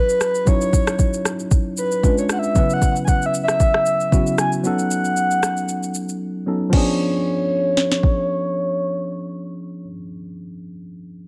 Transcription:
0.00 0.42 F#3 medium
0.00 0.43 C#4 medium
0.00 0.44 E4 medium
0.00 0.43 F#4 medium
0.00 0.49 B4 loud
0.09 shaker medium
0.21 cross-stick medium
0.21 shaker medium
0.35 shaker soft
0.45 1.99 F#3 medium
0.45 2.00 C#4 medium
0.45 2.00 D#4 medium
0.45 2.01 E4 medium
0.45 1.26 C#5 loud
0.45 2.01 C#5 medium
0.45 kick loud
0.45 shaker medium
0.61 shaker medium
0.73 kick medium
0.73 shaker loud
0.87 cross-stick medium
0.87 shaker medium
0.99 kick medium
0.99 shaker medium
1.13 shaker medium
1.25 cross-stick medium
1.25 shaker medium
1.40 shaker soft
1.51 kick loud
1.51 shaker medium
1.77 2.15 B4 medium
1.77 shaker medium
1.92 shaker soft
2.03 2.55 G#3 medium
2.03 2.56 C#4 medium
2.03 2.56 D4 medium
2.03 2.56 F4 medium
2.03 2.56 B4 medium
2.03 kick loud
2.03 shaker medium
2.18 2.24 C#5 medium
2.18 shaker medium
2.29 2.40 F#5 medium
2.29 cross-stick loud
2.29 shaker medium
2.39 2.73 E5 medium
2.43 shaker soft
2.54 4.08 C#3 medium
2.54 4.09 F#3 medium
2.54 4.09 B3 medium
2.54 4.09 C#4 medium
2.54 4.10 E4 medium
2.54 4.10 B4 medium
2.54 kick loud
2.54 shaker medium
2.70 2.89 F#5 loud
2.70 shaker medium
2.82 kick medium
2.82 shaker loud
2.91 2.97 F#5 medium
2.96 shaker medium
3.05 3.25 F#5 loud
3.05 3.10 G#5 medium
3.05 kick medium
3.05 shaker medium
3.22 3.34 E5 medium
3.22 shaker medium
3.34 shaker medium
3.43 4.35 E5 loud
3.48 cross-stick medium
3.48 shaker soft
3.60 kick loud
3.60 shaker medium
3.74 cross-stick medium
3.86 shaker medium
4.00 shaker soft
4.12 4.64 C#3 medium
4.12 4.62 F#3 medium
4.12 4.63 B3 medium
4.12 4.64 C#4 medium
4.12 4.65 E4 medium
4.12 4.65 F#4 medium
4.12 kick medium
4.12 shaker medium
4.27 shaker medium
4.38 4.51 G#5 loud
4.38 cross-stick medium
4.38 shaker medium
4.52 shaker soft
4.63 6.43 F#3 medium
4.63 6.43 B3 medium
4.63 6.43 C#4 medium
4.63 6.44 D#4 medium
4.63 6.44 A4 medium
4.63 6.17 F#5 loud
4.63 shaker medium
4.79 shaker medium
4.91 shaker loud
5.05 shaker medium
5.16 shaker medium
5.31 shaker medium
5.43 cross-stick medium
5.43 shaker medium
5.57 shaker soft
5.69 shaker medium
5.83 shaker medium
5.94 shaker medium
6.09 shaker soft
6.46 6.73 F#3 medium
6.46 6.70 B3 medium
6.46 6.72 C#4 soft
6.46 6.73 D#4 soft
6.46 6.74 A4 medium
6.70 9.83 F3 medium
6.70 9.85 B3 medium
6.70 9.87 C#4 medium
6.70 kick loud
6.70 crash medium
6.74 9.89 D4 medium
6.74 9.91 G#4 medium
6.74 9.87 C#5 loud
7.77 snare medium
7.92 snare medium
8.03 kick medium

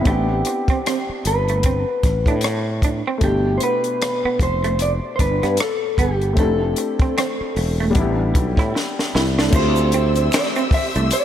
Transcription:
0.01 3.15 B3 medium
0.01 3.16 C4 soft
0.05 0.42 A1 medium
0.05 0.25 A3 medium
0.05 3.18 D4 medium
0.05 3.19 E4 soft
0.05 1.27 G4 medium
0.05 kick medium
0.05 closed hi-hat medium
0.11 3.20 G4 medium
0.45 muted clean electric guitar stroke soft
0.45 closed hi-hat medium
0.68 0.82 C4 medium
0.68 kick medium
0.68 closed hi-hat soft
0.86 1.04 C4 medium
0.86 cross-stick loud
0.86 closed hi-hat medium
1.09 muted fretless electric bass stroke soft
1.25 1.83 G1 medium
1.25 2.40 B4 medium
1.25 muted clean electric guitar stroke soft
1.25 closed hi-hat medium
1.48 1.62 A3 medium
1.48 closed hi-hat soft
1.63 1.84 C4 medium
1.63 kick medium
1.63 closed hi-hat medium
2.03 2.25 A1 medium
2.03 muted clean electric guitar stroke soft
2.03 kick medium
2.03 cross-stick soft
2.03 closed hi-hat medium
2.26 3.01 A2 medium
2.26 2.41 D4 medium
2.26 kick medium
2.26 closed hi-hat soft
2.41 muted clean electric guitar stroke soft
2.41 cross-stick loud
2.41 closed hi-hat medium
2.82 3.02 D4 medium
2.82 kick medium
2.82 closed hi-hat medium
3.07 3.20 C4 medium
3.18 6.33 B2 medium
3.18 6.31 A3 medium
3.18 kick medium
3.18 closed hi-hat medium
3.22 3.57 G1 medium
3.22 3.41 A3 medium
3.22 6.34 D4 medium
3.22 6.35 E4 medium
3.22 3.57 G4 medium
3.28 6.36 G4 medium
3.58 3.62 C5 medium
3.58 closed hi-hat medium
3.63 3.81 B3 medium
3.63 4.42 B4 medium
3.84 closed hi-hat soft
4.02 cross-stick loud
4.02 closed hi-hat medium
4.25 4.38 B3 medium
4.25 muted fretless electric bass stroke soft
4.39 4.99 F1 medium
4.39 4.82 C5 medium
4.39 muted clean electric guitar stroke soft
4.39 kick medium
4.39 closed hi-hat medium
4.64 4.77 A3 medium
4.64 closed hi-hat soft
4.79 4.91 D5 medium
4.79 muted clean electric guitar stroke soft
4.79 closed hi-hat medium
5.16 5.20 C5 medium
5.16 kick medium
5.16 closed hi-hat medium
5.20 5.40 G1 medium
5.20 5.38 D4 medium
5.20 5.60 B4 medium
5.43 5.57 G2 medium
5.43 5.56 B3 medium
5.43 cross-stick soft
5.43 closed hi-hat soft
5.57 6.00 A4 medium
5.57 cross-stick loud
5.57 closed hi-hat medium
5.98 6.38 G1 medium
5.98 6.17 B3 medium
5.98 6.36 G4 medium
5.98 kick medium
5.98 closed hi-hat medium
6.22 closed hi-hat soft
6.33 7.90 A3 medium
6.33 7.91 C4 medium
6.33 kick medium
6.33 closed hi-hat medium
6.38 6.73 F1 medium
6.38 6.57 A3 medium
6.38 7.92 D4 medium
6.38 7.94 E4 medium
6.38 8.71 A4 medium
6.43 7.95 G4 medium
6.76 muted clean electric guitar stroke soft
6.76 closed hi-hat medium
6.99 7.14 C4 medium
6.99 kick medium
6.99 closed hi-hat soft
7.18 7.36 C4 medium
7.18 cross-stick loud
7.18 closed hi-hat medium
7.41 muted fretless electric bass stroke soft
7.56 7.92 E1 medium
7.56 muted clean electric guitar stroke soft
7.56 open hi-hat soft
7.80 7.93 A3 medium
7.91 9.47 G3 medium
7.91 9.49 B3 medium
7.95 8.31 A1 medium
7.95 9.50 D4 medium
7.95 8.15 D4 medium
7.95 9.51 E4 medium
7.95 kick medium
7.95 closed hi-hat medium
8.01 9.52 G4 medium
8.35 8.56 B1 medium
8.35 muted clean electric guitar stroke soft
8.35 kick medium
8.35 closed hi-hat medium
8.57 8.73 A2 medium
8.57 8.72 E4 medium
8.57 kick medium
8.57 cross-stick soft
8.57 closed hi-hat soft
8.75 muted clean electric guitar stroke soft
8.75 snare medium
8.99 snare medium
9.15 9.50 C2 medium
9.15 9.33 E4 medium
9.15 snare medium
9.38 9.51 D4 medium
9.38 snare medium
9.48 11.25 A3 medium
9.48 11.25 C4 medium
9.48 11.25 G4 medium
9.48 11.25 C6 medium
9.48 crash loud
9.53 10.28 D2 loud
9.53 9.73 A3 medium
9.53 11.25 E4 medium
9.53 11.25 F4 medium
9.53 10.34 C5 loud
9.53 11.25 E5 medium
9.53 11.25 E6 medium
9.53 kick loud
9.53 shaker medium
9.58 11.25 G4 medium
9.76 shaker medium
9.92 10.12 C4 medium
9.92 closed hi-hat medium
9.92 shaker soft
10.16 closed hi-hat soft
10.16 shaker soft
10.32 finger snap medium
10.32 snare loud
10.32 closed hi-hat medium
10.32 shaker medium
10.34 10.45 D5 loud
10.34 finger snap loud
10.56 10.69 C4 medium
10.56 shaker soft
10.71 10.84 E5 loud
10.71 muted fretless electric bass stroke soft
10.71 muted clean electric guitar stroke soft
10.71 kick medium
10.71 open hi-hat soft
10.95 11.10 C2 medium
10.95 11.09 A3 medium
10.95 closed hi-hat soft
10.95 shaker soft
11.11 11.25 D5 loud
11.11 muted clean electric guitar stroke soft
11.11 closed hi-hat medium
11.11 shaker medium

